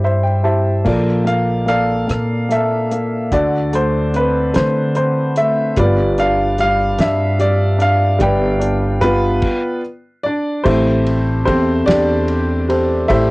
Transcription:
0.00 0.82 G2 medium
0.00 0.81 G3 medium
0.00 0.43 E4 soft
0.00 0.44 G4 soft
0.00 0.05 C5 soft
0.00 0.04 E5 medium
0.00 0.23 E5 medium
0.05 0.42 C5 medium
0.23 0.43 G5 medium
0.43 0.84 E4 soft
0.43 0.84 G4 soft
0.43 0.84 C5 soft
0.43 0.87 E5 medium
0.43 0.82 A5 soft
0.84 2.05 A#1 medium
0.84 1.23 A#3 medium
0.84 2.05 F4 soft
0.84 1.67 A4 soft
0.84 1.24 D5 medium
0.84 kick medium
0.84 crash medium
1.25 1.65 A#3 soft
1.25 1.67 F5 medium
1.25 closed hi-hat soft
1.66 2.06 A#3 soft
1.66 2.50 A4 medium
1.66 2.87 D5 medium
1.66 2.46 F5 medium
1.66 closed hi-hat soft
2.07 3.28 A#2 medium
2.07 2.47 A#3 soft
2.07 cross-stick medium
2.07 closed hi-hat medium
2.49 2.90 A#3 soft
2.49 3.28 A4 medium
2.49 3.35 E5 medium
2.49 closed hi-hat soft
2.91 3.31 A#3 soft
2.91 closed hi-hat medium
3.32 4.51 D2 medium
3.32 5.73 D3 medium
3.32 4.51 F#4 medium
3.32 4.51 A4 soft
3.32 3.75 D5 medium
3.32 kick medium
3.32 closed hi-hat medium
3.73 4.52 A3 medium
3.73 4.16 C5 medium
3.73 closed hi-hat soft
4.14 4.94 C4 soft
4.14 4.57 B4 medium
4.14 closed hi-hat soft
4.54 5.73 D3 medium
4.54 5.36 A3 soft
4.54 4.95 C5 medium
4.54 snare medium
4.54 closed hi-hat medium
4.95 5.74 C4 soft
4.95 5.38 C5 medium
4.95 closed hi-hat soft
5.36 5.76 A3 soft
5.36 5.75 E5 medium
5.36 closed hi-hat soft
5.76 6.95 G1 loud
5.76 6.57 G3 medium
5.76 6.96 F4 medium
5.76 6.96 B4 medium
5.76 6.20 D5 medium
5.76 kick medium
5.76 closed hi-hat medium
6.18 6.97 D4 medium
6.18 6.56 F5 medium
6.18 closed hi-hat soft
6.58 7.38 G3 soft
6.58 7.01 F5 medium
6.58 closed hi-hat soft
6.98 8.16 G2 medium
6.98 7.77 D4 medium
6.98 7.41 E5 medium
6.98 snare medium
6.98 closed hi-hat medium
7.39 8.17 G3 soft
7.39 7.82 D5 medium
7.39 closed hi-hat soft
7.78 8.58 D4 medium
7.78 8.22 F5 medium
7.78 closed hi-hat soft
8.19 9.39 G1 loud
8.19 8.99 G3 medium
8.19 9.00 B4 medium
8.19 9.81 D5 medium
8.19 9.80 G5 medium
8.19 kick medium
8.19 closed hi-hat medium
8.60 9.39 D4 medium
8.60 closed hi-hat soft
9.01 9.41 G3 medium
9.01 9.81 B3 medium
9.01 9.80 F4 medium
9.01 9.79 B4 loud
9.01 kick medium
9.01 closed hi-hat soft
9.42 kick medium
9.42 crash medium
10.23 10.64 D4 medium
10.23 10.66 D5 medium
10.64 11.43 A1 medium
10.64 13.05 A3 medium
10.64 11.43 C4 medium
10.64 11.43 E4 medium
10.64 11.43 G4 medium
10.64 11.44 C5 medium
10.64 kick medium
10.64 crash medium
11.06 ride soft
11.45 11.86 E2 medium
11.45 11.86 C4 medium
11.45 11.86 G4 soft
11.45 12.26 A4 soft
11.45 11.88 C5 medium
11.45 kick medium
11.45 ride medium
11.86 13.05 E2 medium
11.86 13.05 D4 medium
11.86 12.67 G4 medium
11.86 13.05 D5 medium
11.86 snare medium
11.86 ride medium
12.28 ride soft
12.68 13.09 G4 soft
12.68 13.31 A4 soft
12.68 13.09 C5 medium
12.68 ride medium
13.08 13.31 A1 medium
13.08 13.31 A3 medium
13.08 13.31 E4 medium
13.08 13.31 G4 medium
13.08 13.31 C5 medium
13.08 13.31 E5 medium
13.08 kick medium
13.08 ride medium

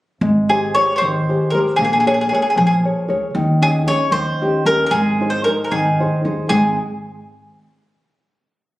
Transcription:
0.21 0.73 G#1 medium
0.21 0.74 G#3 medium
0.49 0.75 G4 soft
0.49 0.74 G#4 medium
0.49 0.75 G#4 soft
0.49 0.76 C5 soft
0.75 1.19 G4 soft
0.75 1.19 G#4 soft
0.75 1.19 C5 soft
0.75 0.93 C#5 medium
0.96 1.49 C5 medium
0.96 1.02 C#5 medium
1.02 1.36 G#1 medium
1.02 1.53 D#3 medium
1.29 1.53 G4 soft
1.29 1.54 G#4 soft
1.29 1.54 C5 soft
1.50 1.71 D#2 medium
1.50 1.74 G4 soft
1.50 1.58 A#4 medium
1.55 1.75 G#4 soft
1.55 1.75 C5 soft
1.76 2.30 A#1 medium
1.76 1.83 G#4 medium
1.81 2.31 A#3 medium
1.81 1.92 G#4 soft
1.93 1.99 G#4 soft
2.00 2.06 G#4 soft
2.06 2.31 G#4 soft
2.06 2.13 G#4 medium
2.06 2.31 A#4 soft
2.06 2.32 C#5 soft
2.14 2.20 G#4 soft
2.21 2.28 G#4 soft
2.29 2.33 G#4 soft
2.29 2.74 G#4 soft
2.29 2.74 A#4 soft
2.29 2.74 C#5 soft
2.35 2.41 G#4 soft
2.42 2.49 G#4 soft
2.50 2.56 G#4 soft
2.56 2.91 A#1 medium
2.56 3.07 F3 medium
2.56 2.65 G#4 medium
2.67 2.74 G#4 medium
2.84 3.07 G#4 soft
2.84 3.07 A#4 soft
2.84 3.08 C#5 medium
3.08 3.26 D2 medium
3.08 3.29 G#4 soft
3.08 3.29 A#4 soft
3.08 3.30 C#5 soft
3.35 3.86 D#2 loud
3.35 3.86 D#3 medium
3.62 3.85 C#4 soft
3.62 3.86 D#4 soft
3.62 3.86 G#4 soft
3.62 3.69 G#4 medium
3.87 4.08 C#4 soft
3.87 4.08 D#4 soft
3.87 4.08 G#4 medium
3.87 4.12 C#5 medium
4.11 4.47 D#2 medium
4.11 4.65 D#3 soft
4.11 4.66 C5 medium
4.41 4.65 C#4 soft
4.41 4.66 D#4 soft
4.41 4.66 G4 soft
4.65 4.83 D#2 medium
4.65 4.87 C#4 soft
4.65 4.88 D#4 soft
4.65 4.88 G4 soft
4.65 4.84 A#4 medium
4.86 4.93 A#4 medium
4.91 5.43 G#1 medium
4.91 5.45 G#3 medium
4.91 5.29 G#4 medium
5.20 5.45 D#4 soft
5.20 5.45 G#4 soft
5.20 5.45 C5 soft
5.30 5.43 C5 medium
5.44 5.89 D#4 soft
5.44 5.89 G#4 soft
5.44 5.50 A#4 medium
5.44 5.89 C5 soft
5.64 5.71 A#4 soft
5.71 6.06 G#1 medium
5.71 6.23 D#3 soft
5.71 6.47 G#4 medium
6.00 6.23 D#4 soft
6.00 6.24 G#4 soft
6.00 6.24 C5 soft
6.25 6.41 D#2 medium
6.25 6.45 D#4 soft
6.25 6.46 G#4 soft
6.25 6.46 C5 soft
6.49 6.76 G#1 medium
6.49 6.75 G#2 soft
6.49 6.76 D#3 soft
6.49 6.76 G#3 soft
6.49 6.76 C4 soft
6.49 6.76 D#4 soft
6.49 6.75 G#4 medium

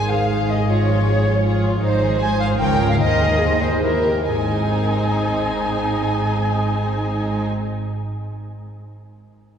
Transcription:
0.00 1.78 G#1 soft
0.00 0.67 G#2 soft
0.00 1.78 G#2 soft
0.00 0.70 D#3 soft
0.00 1.05 G#3 soft
0.00 0.11 D#4 soft
0.00 0.64 G#4 soft
0.00 0.11 C5 soft
0.00 0.11 G#5 medium
0.09 0.49 D#4 soft
0.09 0.30 G#4 soft
0.09 0.51 F5 medium
0.09 0.49 F5 soft
0.30 1.42 G#4 soft
0.30 0.48 C5 soft
0.49 0.70 D#4 soft
0.49 0.66 G#4 soft
0.49 0.67 D#5 soft
0.49 0.69 D#5 soft
0.67 1.80 G#2 soft
0.67 1.05 F4 soft
0.67 0.85 G#4 soft
0.67 1.61 C#5 medium
0.67 1.64 C#5 soft
0.88 1.84 F3 soft
0.88 1.07 F4 soft
1.06 2.19 G#3 soft
1.06 1.44 G#4 soft
1.06 1.26 G#4 soft
1.26 1.61 F4 soft
1.26 1.45 F4 soft
1.44 1.81 F4 soft
1.44 2.61 G#4 soft
1.44 1.62 G#4 soft
1.63 1.83 F4 soft
1.63 1.82 F4 soft
1.81 2.57 G#1 medium
1.81 2.57 G#2 medium
1.81 2.60 G#2 soft
1.81 2.19 D#4 soft
1.81 2.18 C5 medium
1.81 2.00 C5 soft
2.01 2.61 D#3 soft
2.01 2.20 G#4 soft
2.20 2.61 G#3 soft
2.20 2.59 C5 medium
2.20 2.40 C5 soft
2.20 2.40 G#5 medium
2.20 2.39 G#5 medium
2.39 2.60 D#4 soft
2.39 2.59 G#4 soft
2.39 2.45 F5 medium
2.39 2.49 F5 medium
2.58 2.99 C#2 medium
2.58 3.00 C#3 medium
2.58 2.97 A#4 medium
2.58 2.78 C#5 soft
2.58 2.65 G5 medium
2.58 2.89 G5 medium
2.78 3.00 F4 soft
2.78 2.99 A#4 soft
2.78 3.01 A#4 soft
2.88 2.93 F5 medium
2.88 2.95 F5 medium
2.98 4.05 D#2 medium
2.98 4.06 D#2 medium
2.98 3.81 D#3 medium
2.98 3.39 A#4 medium
2.98 3.19 C5 medium
2.98 3.63 D#5 medium
2.98 3.61 D#5 medium
3.19 3.85 G#3 soft
3.19 3.40 G#4 soft
3.40 4.39 D#4 soft
3.40 3.83 G#4 medium
3.40 3.61 C5 soft
3.59 3.82 G#4 soft
3.59 3.85 C5 soft
3.59 3.84 C5 medium
3.59 3.70 C5 medium
3.82 4.29 D#3 soft
3.82 4.03 E4 soft
3.82 4.05 G4 medium
3.82 4.27 A#4 medium
3.82 4.25 A#4 medium
4.04 4.29 E4 soft
4.04 4.28 G4 soft
4.25 7.46 G#1 soft
4.25 8.17 G#2 soft
4.25 7.46 G#2 soft
4.25 7.45 C4 soft
4.25 7.45 D#4 soft
4.25 7.43 G#4 medium
4.25 7.46 G#5 soft
4.34 7.78 G#3 soft
4.41 7.59 D#4 soft
4.48 7.66 C5 soft
4.55 7.73 D#5 soft

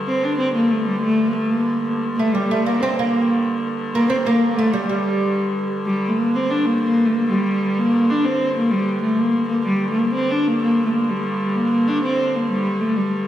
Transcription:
0.00 2.03 G2 medium
0.00 2.03 D3 medium
0.07 0.25 C4 medium
0.24 0.37 D4 medium
0.38 0.54 C4 medium
0.54 0.72 A#3 medium
0.70 0.86 A3 medium
0.87 1.02 G3 medium
1.02 1.29 A3 medium
1.27 1.30 A#3 medium
1.27 1.33 A#3 medium
1.32 1.35 A3 medium
1.32 1.51 A3 medium
1.50 1.89 A#3 medium
2.03 5.86 G2 medium
2.03 5.86 D3 medium
2.16 2.34 A3 medium
2.16 2.36 A3 medium
2.33 2.50 G3 medium
2.48 2.65 A3 medium
2.48 2.66 A3 medium
2.63 2.81 A#3 medium
2.63 2.82 A#3 medium
2.80 2.96 C4 medium
2.80 2.99 C4 medium
2.97 3.58 A#3 medium
2.97 3.59 A#3 medium
3.94 4.08 A#3 medium
3.94 4.09 A#3 medium
4.09 4.16 C4 medium
4.09 4.26 C4 medium
4.25 4.55 A#3 medium
4.25 4.58 A#3 medium
4.56 4.73 A3 medium
4.56 4.75 A3 medium
4.72 4.86 G3 medium
4.72 4.88 G3 medium
4.87 5.64 G3 medium
4.87 5.65 G3 medium
5.85 9.66 G2 medium
5.85 9.66 D3 medium
5.85 6.10 G3 medium
6.09 6.19 A3 medium
6.17 6.36 A#3 medium
6.35 6.51 C4 medium
6.50 6.67 D4 medium
6.65 6.80 A#3 medium
6.81 7.07 A#3 medium
7.05 7.15 A3 medium
7.13 7.29 A#3 medium
7.29 7.79 G3 medium
7.78 8.11 A#3 medium
8.09 8.26 D4 medium
8.25 8.56 C4 medium
8.57 8.72 A#3 medium
8.71 9.02 G3 medium
9.02 9.19 A3 medium
9.18 9.48 A#3 medium
9.48 9.64 A#3 medium
9.66 13.28 G2 medium
9.66 13.28 D3 medium
9.66 9.88 G3 medium
9.91 9.99 A3 medium
9.98 10.13 A#3 medium
10.13 10.32 C4 medium
10.30 10.49 D4 medium
10.47 10.62 A#3 medium
10.62 10.84 A#3 medium
10.85 10.92 A3 medium
10.93 11.10 A#3 medium
11.09 11.57 G3 medium
11.55 11.89 A#3 medium
11.87 12.03 D4 medium
12.03 12.37 C4 medium
12.35 12.50 A#3 medium
12.51 12.82 G3 medium
12.80 12.98 A3 medium
12.97 13.28 G3 medium

